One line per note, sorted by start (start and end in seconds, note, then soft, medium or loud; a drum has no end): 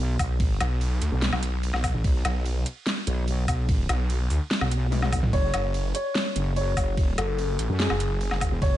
0.00 0.18 B1 loud
0.19 0.59 B1 loud
0.19 kick medium
0.19 open hi-hat medium
0.19 low woodblock medium
0.40 kick loud
0.40 ride medium
0.61 1.00 B1 loud
0.61 closed hi-hat medium
0.61 low woodblock medium
0.81 ride soft
1.02 1.10 D2 loud
1.02 closed hi-hat medium
1.12 1.31 B1 loud
1.22 snare loud
1.22 ride medium
1.33 1.72 B1 loud
1.33 low woodblock medium
1.43 closed hi-hat medium
1.63 ride soft
1.74 1.93 B1 loud
1.74 snare soft
1.74 low woodblock medium
1.84 kick medium
1.84 open hi-hat medium
1.84 low woodblock medium
1.94 2.03 A1 loud
2.04 2.23 B1 loud
2.04 kick loud
2.04 ride medium
2.25 2.64 B1 loud
2.25 closed hi-hat medium
2.25 low woodblock medium
2.46 ride soft
2.66 closed hi-hat medium
2.87 snare loud
2.87 ride medium
3.07 3.47 B1 loud
3.07 closed hi-hat medium
3.28 ride medium
3.48 3.88 B1 loud
3.48 kick medium
3.48 open hi-hat medium
3.48 low woodblock medium
3.69 kick loud
3.69 ride medium
3.89 4.29 B1 loud
3.89 closed hi-hat medium
3.89 low woodblock medium
4.10 closed hi-hat soft
4.10 ride soft
4.30 4.39 D2 loud
4.30 open hi-hat medium
4.51 snare loud
4.51 ride medium
4.61 5.21 B1 loud
4.61 low woodblock medium
4.71 closed hi-hat medium
4.92 high tom medium
4.92 ride soft
5.02 snare soft
5.02 high tom medium
5.02 low woodblock medium
5.13 kick medium
5.13 open hi-hat loud
5.13 low woodblock medium
5.23 5.31 B1 loud
5.23 mid tom medium
5.33 5.52 F#1 loud
5.33 5.87 C#5 loud
5.33 kick loud
5.33 ride medium
5.54 5.93 F#1 loud
5.54 closed hi-hat medium
5.54 low woodblock medium
5.74 ride soft
5.95 6.48 C#5 loud
5.95 closed hi-hat medium
6.15 snare loud
6.15 ride medium
6.36 6.75 F#1 medium
6.36 closed hi-hat medium
6.56 7.10 C#5 loud
6.56 ride soft
6.77 7.16 F#1 loud
6.77 kick medium
6.77 open hi-hat loud
6.77 low woodblock medium
6.97 kick loud
6.97 ride medium
7.18 7.58 F#1 loud
7.18 7.72 A4 loud
7.18 closed hi-hat medium
7.18 low woodblock medium
7.39 ride soft
7.59 7.68 A1 loud
7.59 closed hi-hat medium
7.70 7.88 F#2 loud
7.80 8.54 G#4 medium
7.80 snare loud
7.80 ride medium
7.90 8.30 F#1 loud
7.90 low woodblock medium
8.00 closed hi-hat medium
8.21 ride soft
8.31 8.50 F#1 loud
8.31 snare soft
8.31 low woodblock medium
8.41 kick medium
8.41 open hi-hat medium
8.41 low woodblock medium
8.52 8.60 E1 loud
8.62 8.77 F#1 loud
8.62 8.77 C#5 loud
8.62 kick loud
8.62 ride medium